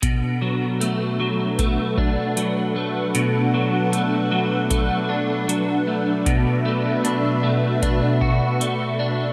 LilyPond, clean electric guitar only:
\new Staff \with { instrumentName = "Clean electric guitar" } { \time 4/4 \key b \minor \tempo 4 = 77 b,8 fis8 a8 fis8 a8 d'8 fis8 a8 | b,8 fis8 a8 fis8 a8 d'8 fis8 a8 | b,8 a8 d'8 a8 d'8 fis'8 a8 d'8 | }